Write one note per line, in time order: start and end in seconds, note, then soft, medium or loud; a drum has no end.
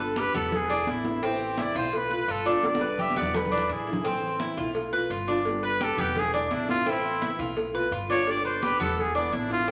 0.00 0.29 G1 medium
0.00 0.34 D3 medium
0.00 0.34 G3 medium
0.00 0.34 B3 medium
0.00 1.17 B3 medium
0.00 0.33 G4 medium
0.00 0.21 A4 medium
0.00 0.17 B4 medium
0.16 0.34 G4 medium
0.16 0.35 B4 medium
0.16 cowbell medium
0.16 high conga medium
0.34 0.84 E1 loud
0.34 0.52 G3 medium
0.34 0.69 B3 medium
0.34 0.51 B3 medium
0.34 0.51 G4 medium
0.34 0.57 A4 medium
0.34 cowbell medium
0.34 high conga soft
0.34 low conga medium
0.52 0.92 G#4 medium
0.52 muted nylon-string guitar stroke medium
0.52 cowbell loud
0.52 high conga soft
0.52 low conga medium
0.69 1.04 G#3 soft
0.69 1.04 B3 soft
0.69 0.87 D4 medium
0.69 1.03 E4 soft
0.69 high conga soft
0.87 1.70 A1 medium
0.87 1.22 E4 medium
0.87 1.27 E4 medium
0.87 cowbell medium
0.87 high conga medium
1.04 1.22 D3 medium
1.04 1.22 G#3 medium
1.04 1.22 B3 medium
1.04 1.22 E4 medium
1.04 cowbell medium
1.04 high conga medium
1.22 1.75 E3 medium
1.22 1.75 A3 medium
1.22 1.57 C4 medium
1.22 1.75 C4 medium
1.22 1.74 E4 medium
1.22 1.63 G4 medium
1.22 cowbell loud
1.22 high conga soft
1.40 high conga soft
1.58 1.75 E4 medium
1.58 1.77 D5 medium
1.58 cowbell medium
1.58 high conga medium
1.75 2.25 B1 loud
1.75 1.92 A3 medium
1.75 1.93 C4 medium
1.75 1.92 E4 medium
1.75 2.10 F4 medium
1.75 1.98 C5 medium
1.75 high conga soft
1.93 2.33 B4 medium
1.93 muted nylon-string guitar stroke medium
1.93 cowbell loud
1.93 high conga soft
2.10 2.45 A3 soft
2.10 2.45 B3 soft
2.10 2.44 F4 soft
2.10 2.28 B4 medium
2.10 high conga soft
2.28 3.10 G1 medium
2.28 2.45 F4 medium
2.28 2.68 A4 medium
2.28 cowbell medium
2.28 high conga soft
2.45 2.62 D3 medium
2.45 2.63 A3 medium
2.45 2.63 B3 medium
2.45 2.80 D4 medium
2.45 2.63 F4 medium
2.45 cowbell medium
2.45 high conga soft
2.63 3.16 D3 medium
2.63 3.16 G3 medium
2.63 3.16 B3 medium
2.63 3.15 G4 medium
2.63 3.03 D5 medium
2.63 cowbell loud
2.63 high conga loud
2.75 high conga loud
2.81 2.98 B4 medium
2.98 3.16 G4 medium
2.98 3.17 E5 medium
2.98 cowbell medium
2.98 low conga medium
3.11 high conga medium
3.16 3.66 E1 loud
3.16 3.34 G3 medium
3.16 3.51 B3 medium
3.16 3.34 B3 medium
3.16 3.33 G4 medium
3.16 3.38 D5 medium
3.16 cowbell medium
3.22 low conga loud
3.34 3.73 B4 medium
3.34 muted nylon-string guitar stroke medium
3.34 cowbell loud
3.34 low conga loud
3.46 low conga medium
3.52 3.86 G#3 soft
3.52 3.86 B3 soft
3.52 3.69 D4 medium
3.52 3.85 E4 soft
3.58 low conga medium
3.69 4.52 A1 medium
3.69 4.03 E4 medium
3.69 4.09 G#4 medium
3.69 cowbell medium
3.87 4.04 D3 medium
3.87 4.04 G#3 medium
3.87 4.04 B3 medium
3.87 4.04 E4 medium
3.87 cowbell medium
3.93 low conga medium
4.04 4.57 E3 medium
4.04 4.57 A3 medium
4.04 4.39 C4 medium
4.04 4.56 C4 medium
4.04 4.56 E4 medium
4.04 4.41 C5 medium
4.04 cowbell loud
4.04 high conga soft
4.23 high conga soft
4.40 4.57 E4 medium
4.40 cowbell medium
4.40 high conga medium
4.57 5.07 B1 medium
4.57 4.74 A3 medium
4.57 4.74 C4 medium
4.57 4.74 E4 medium
4.57 4.92 F4 medium
4.57 high conga soft
4.75 muted nylon-string guitar stroke medium
4.75 cowbell loud
4.75 high conga soft
4.92 5.28 A3 soft
4.92 5.27 B3 soft
4.92 5.26 F4 medium
4.92 5.10 B4 medium
4.92 high conga soft
5.10 5.92 G1 medium
5.10 5.27 F4 medium
5.10 cowbell medium
5.10 high conga soft
5.28 5.44 D3 medium
5.28 5.45 A3 medium
5.28 5.45 B3 medium
5.28 5.62 D4 medium
5.28 5.45 F4 medium
5.28 cowbell medium
5.28 high conga soft
5.45 5.97 D3 medium
5.45 5.98 G3 medium
5.45 5.98 B3 medium
5.45 5.97 G4 medium
5.45 cowbell loud
5.45 high conga soft
5.63 5.80 B4 medium
5.63 5.85 B4 medium
5.63 high conga soft
5.81 5.98 G4 medium
5.81 6.01 A4 medium
5.81 cowbell medium
5.81 high conga loud
5.97 6.47 E1 loud
5.97 6.16 G3 medium
5.97 6.32 B3 medium
5.97 6.15 B3 medium
5.97 6.15 G4 medium
5.97 6.20 G4 medium
5.97 cowbell medium
5.97 high conga soft
5.97 low conga medium
6.16 6.34 G#4 medium
6.16 muted nylon-string guitar stroke medium
6.16 cowbell loud
6.16 high conga soft
6.16 low conga medium
6.33 6.68 G#3 soft
6.33 6.67 B3 soft
6.33 6.50 B3 medium
6.33 6.51 D4 medium
6.33 6.66 E4 soft
6.33 high conga soft
6.51 7.33 A1 medium
6.51 6.69 D4 medium
6.51 6.85 E4 medium
6.51 cowbell medium
6.51 high conga medium
6.68 6.85 D3 medium
6.68 6.86 G#3 medium
6.68 6.85 B3 medium
6.68 6.85 E4 medium
6.68 6.91 F4 loud
6.68 cowbell medium
6.68 high conga medium
6.85 7.38 E3 medium
6.85 7.38 A3 medium
6.85 7.20 C4 medium
6.85 7.38 C4 medium
6.85 7.37 E4 medium
6.85 cowbell loud
6.85 high conga soft
6.89 7.41 E4 medium
7.04 high conga soft
7.22 7.39 E4 medium
7.22 cowbell medium
7.22 high conga loud
7.38 7.88 B1 medium
7.38 7.56 A3 medium
7.38 7.56 C4 medium
7.38 7.56 E4 medium
7.38 7.73 F4 medium
7.38 high conga soft
7.56 muted nylon-string guitar stroke medium
7.56 cowbell loud
7.56 high conga soft
7.74 8.09 A3 soft
7.74 8.08 B3 soft
7.74 8.08 F4 medium
7.74 7.92 B4 medium
7.74 high conga soft
7.91 8.74 G1 medium
7.91 8.09 F4 medium
7.91 cowbell medium
7.91 high conga soft
8.09 8.25 D3 medium
8.09 8.26 A3 medium
8.09 8.26 B3 medium
8.09 8.44 D4 medium
8.09 8.26 F4 medium
8.09 8.31 C#5 loud
8.09 cowbell medium
8.09 high conga soft
8.26 8.79 D3 medium
8.26 8.79 G3 medium
8.26 8.79 B3 medium
8.26 8.78 G4 medium
8.26 8.45 D5 loud
8.26 cowbell loud
8.26 high conga soft
8.45 8.62 B4 medium
8.45 8.66 C5 medium
8.45 high conga soft
8.62 8.79 G4 medium
8.62 8.80 B4 medium
8.62 cowbell medium
8.62 high conga medium
8.79 9.29 E1 loud
8.79 8.97 G3 medium
8.79 9.14 B3 medium
8.79 8.97 B3 medium
8.79 8.97 G4 medium
8.79 9.02 A4 medium
8.79 cowbell medium
8.79 high conga soft
8.79 low conga medium
8.97 9.16 G#4 medium
8.97 muted nylon-string guitar stroke medium
8.97 cowbell loud
8.97 high conga soft
9.14 9.49 G#3 soft
9.14 9.49 B3 soft
9.14 9.37 B3 medium
9.14 9.32 D4 medium
9.14 9.48 E4 soft
9.14 high conga soft
9.32 9.71 A1 medium
9.32 9.51 D4 medium
9.32 9.67 E4 medium
9.32 cowbell medium
9.32 high conga medium
9.49 9.67 D3 medium
9.49 9.67 G#3 medium
9.49 9.67 B3 medium
9.49 9.67 E4 medium
9.49 9.71 F4 loud
9.49 cowbell medium
9.49 high conga medium
9.67 9.71 E3 medium
9.67 9.71 C4 medium